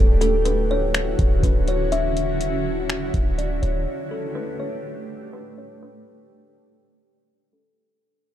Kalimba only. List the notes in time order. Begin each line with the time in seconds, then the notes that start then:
0.21 A4
0.45 B4
0.71 C#5
1.43 B4
1.68 C#5
1.92 E5
3.38 D5
3.62 C#5
4.11 A4
4.35 B4
4.60 C#5
5.33 B4
5.58 C#5
5.83 B4
7.53 A4